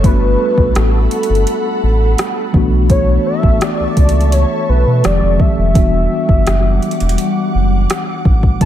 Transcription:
Already playing: A4, downlifter
0.03 G1 G3 A3 B3 D4 B4 F#5 B5, kick, closed hi-hat
0.08 F#4
0.58 B1, kick
0.75 A1 A4, cross-stick, closed hi-hat
1.11 closed hi-hat
1.23 closed hi-hat
1.29 G1
1.35 closed hi-hat
1.47 closed hi-hat
1.83 A1
2.18 cross-stick, closed hi-hat
2.53 B1 E3 A3 B3 D4 E5 A5 C#6, kick
2.57 F#4
2.90 C#5, kick, closed hi-hat
3.26 E5
3.43 A1, kick
3.61 D5, cross-stick, closed hi-hat
3.80 C#2
3.97 C#2, kick, closed hi-hat
4.09 closed hi-hat
4.21 closed hi-hat
4.32 C#5, closed hi-hat
4.69 B1 B4
4.87 B2
5.04 F1 D#3 F3 G#3 C4 G4 D5, cross-stick, closed hi-hat
5.22 F1
5.40 E5, kick
5.58 F1
5.74 E1 E3 G3 B3 D4 F#5 D6, kick, closed hi-hat
5.78 F#4
6.29 G1, kick
6.47 F#1, cross-stick, closed hi-hat
6.82 closed hi-hat
6.91 closed hi-hat
7.00 E1, closed hi-hat
7.09 closed hi-hat
7.18 closed hi-hat
7.55 F#1
7.90 cross-stick, closed hi-hat
8.25 A1, kick
8.43 kick
8.60 B1 F#3 A3 C#4 A4 E5 A5 C#6, kick, closed hi-hat

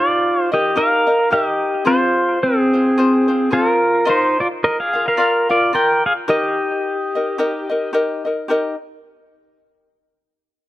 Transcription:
Already playing: D#4 G4 A#4
0.00 F4 D5
0.42 C5
0.52 D#4 G4 A#4 D#5
0.76 D#4 G4 A#4 D#5 F5
1.07 D#4 A#4 D#5
1.30 D#4 G4 A#4 D#5
1.85 C4 F4 G#4 C5
2.43 C4 G#4
2.73 C4 F4 C5
2.98 C4 F4 G#4 C5
3.28 C4 F4 C5
3.50 C4 F4 G#4 A#4 C5
4.05 F4 A#4 D#5 F5
4.10 D#4 C5
4.40 F4 D5
4.64 A#4 D#5
4.80 G#4 F5
4.93 F4 A#4 F5
5.08 A#4 F5
5.17 F4 A#4 D5 F5
5.49 F4 A#4 D5 F5
5.73 F4 A#4 D5 F5 G5
6.06 G#4 F5
6.28 D#4 G4 A#4 D#5
7.15 D#4 A#4 D#5
7.38 D#4 G4 A#4 D#5
7.69 D#4 A#4 D#5
7.93 D#4 G4 A#4 D#5
8.25 D#4 A#4 D#5
8.48 D#4 G4 A#4 D#5

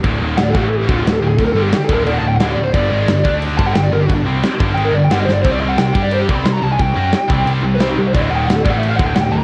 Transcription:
0.04 D1 D2 A2 D3, kick, crash
0.21 D#1 D#2 A#2 D#3
0.37 D1 D2 A2 F#5, snare, crash
0.43 D5
0.50 A2 F#4 A4
0.54 A1 E3 A3, kick
0.60 G4
0.69 A4, crash
0.78 G4
0.87 D1 D2 A2 D3 F#4, kick
0.95 F4
1.05 D1 D2 A2 F#4, snare, crash
1.13 A4
1.21 D1 D2 A2 G4
1.28 G#4
1.38 D1 D2 A2 A4, kick, crash
1.45 A#4
1.53 G1 G2 D3 G3 A4
1.62 G4
1.69 F#4, snare, crash
1.76 G4
1.84 A4
1.89 D1 D2 A2 D3, kick
1.94 A#4
2.03 D#1 D#2 A#2 D#3 A4 D5, crash
2.13 F#5
2.19 D1 D2 A5
2.23 A2
2.28 G5
2.36 D1 D2 F#5
2.40 A2 D3 D#5, snare, crash
2.52 D5
2.57 D1 D2 A2
2.63 C5
2.72 G1 G2 D3 G3 D5, kick, crash
2.91 G#1 G#2 D#3 G#3
3.08 G1 G2 D3, snare, crash
3.24 D2 D3 A3 D4, kick
3.42 crash
3.57 G1 G2 D3 G3 A5, kick
3.66 F#5
3.74 G1 G2 D3 G5, snare, crash
3.83 D5
3.92 G1 G2 D3 A#4
4.00 G4
4.06 G1 G2 D3 F#4, kick, crash
4.15 D4
4.24 C2 C3 G3 C4
4.43 snare, crash
4.58 G1 G2 D3 G3, kick
4.75 G#1 G#2 D#3 G#3 G5, crash
4.85 A#4
4.93 G1 G2 D3 D5
5.04 G1 G5
5.10 G2 D3 G3 F#5, snare, crash
5.20 D#5
5.25 G1 G2 D3 C5, snare
5.34 D5
5.43 C2 C3 G3 C4 C5, kick, crash
5.51 D5
5.60 C2 C3 G3 C4 D#5
5.69 F#5
5.78 C2 C3 G3 G5, snare, crash
5.93 G2 G3 D4 G4, kick
6.03 D5
6.11 C5, crash
6.20 G4
6.27 C2 C3 G3 C4 D6, kick
6.35 B5
6.45 C2 C3 G3 C6, snare, crash
6.53 A#5
6.61 C2 C3 G3 A5
6.72 G#5
6.78 C2 C3 G3 G5, kick, crash
6.94 F#2 F#3 C#4 F#4
7.12 snare, crash
7.28 C2 C3 G3 C4, kick
7.46 C2 C3 G3 C4, crash
7.62 C2 C3 G3
7.75 C3 B4
7.79 C2 G3 C4 C5, snare, crash
7.89 D#4
7.97 C2 C3 G3 G4
8.07 C5
8.13 D1 D2 A2 D3 D5, kick, crash
8.21 D#5
8.30 D#1 D#2 A#2 D#3 F#5
8.36 G5
8.46 D1 D2 A2 F#5, crash
8.50 snare
8.55 A4
8.63 A1 A2 E3 A3 D5, kick
8.70 F#5
8.79 E5
8.83 crash
8.89 F5
8.96 D1 D2 A2 D3 F#5, kick
9.06 G5
9.15 D1 D2 A2 F#5, snare, crash
9.22 G5
9.31 D1 D2 A2 A5
9.38 A#5

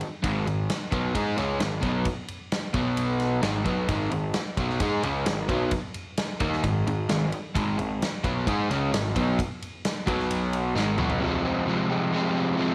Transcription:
0.01 ride
0.23 G#1 G#2 D#3 G#3, kick, ride
0.47 G#1 G#2 D#3, ride
0.69 snare, ride
0.91 B1 B2 F#3 B3, kick, ride
1.14 G#2 G#3 D#4 G#4, kick, ride
1.37 C#2 C#3 G#3 C#4, snare, ride
1.60 G#1 G#2 D#3, snare, ride
1.82 B1 B2 F#3 B3, kick, ride
2.05 kick, ride
2.28 ride
2.52 snare, ride
2.73 B1 B2 F#3 B3, kick, ride
2.97 ride
3.20 snare, ride
3.42 G#1 G#2 D#3 G#3, snare, ride
3.64 B1 B2 F#3 B3, kick, ride
3.88 G#1 G#2 D#3 G#3, kick, ride
4.11 G#1 G#2 D#3, ride
4.34 snare, ride
4.57 B1 B2 F#3 B3, kick, ride
4.70 snare
4.80 G#2 G#3 D#4 G#4, kick, ride
5.03 C#2 C#3 G#3 C#4, ride
5.26 G#1 G#2 D#3, snare, ride
5.49 B1 B2 F#3 B3, kick, ride
5.71 kick, ride
5.94 ride
6.17 snare, ride
6.40 D#2 D#3 A#3 D#4, kick, ride
6.53 snare
6.63 G#1 G#2 D#3, kick, ride
6.87 G#1 G#2 D#3, ride
7.09 G#1 G#2 D#3, snare, ride
7.32 ride
7.55 G#1 G#2 D#3 G#3, kick, ride
7.78 G#1 G#2 D#3, ride
8.02 snare, ride
8.24 B1 B2 F#3 B3, kick, ride
8.46 G#2 G#3 D#4 G#4, kick, ride
8.69 C#2 C#3 G#3 C#4, snare, ride
8.92 G#1 G#2 D#3, snare, ride
9.15 B1 B2 F#3 B3, kick, ride
9.39 kick, ride
9.62 ride
9.85 snare, ride
10.07 B1 B2 F#3 B3, kick, ride
10.19 snare
10.30 ride
10.53 ride
10.75 G#1 G#2 D#3 G#3, snare
10.98 B1 B2 F#3 B3, mid tom
11.10 floor tom
11.20 F2 C3 F3 G#3 C4
11.43 F3 G#3 C4
11.66 C3 F3 G#3 C4
11.89 F3 G#3 C4
12.12 F2 C3 F3 G#3 C4
12.34 F3 G#3 C4
12.57 C3 F3 G#3 C4

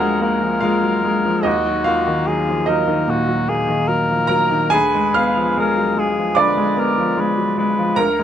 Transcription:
Already playing: D2 F3 F#3 A#3 F#4 G#4 A#4 F#5 G#5 A#5
0.00 G#3
0.20 A#3 A#4
0.42 F3
0.61 G#3 F4 F5
0.84 F#3
1.04 G#3
1.25 F3
1.43 D#2 D#4 F#4 D#5
1.66 F#3
1.84 A#3 F4 F5
2.07 D#3
2.28 F#3 G#4
2.48 F3
2.66 F#3 D#4 A#4 D#5
2.88 D#3
3.08 A#2 F#4
3.28 F#3
3.48 A#3 G#4
3.68 D#3
3.88 F#3 A#4
4.09 F3
4.27 F#3 A#4 A#5
4.51 D#3
4.70 D2 G#4 B4 G#5
4.95 G#3
5.14 B3 F5 F6
5.37 F3
5.57 G#3 A#4
5.77 F#3
5.97 G#3 G#4
6.17 F3
6.35 D3 D5 D6
6.40 B4
6.57 G#3
6.77 B3 A#4
6.98 F3
7.17 G#3 B4
7.37 F#3
7.58 G#3 B4
7.78 F3
7.96 D2 A#4 A#5
8.19 G#3

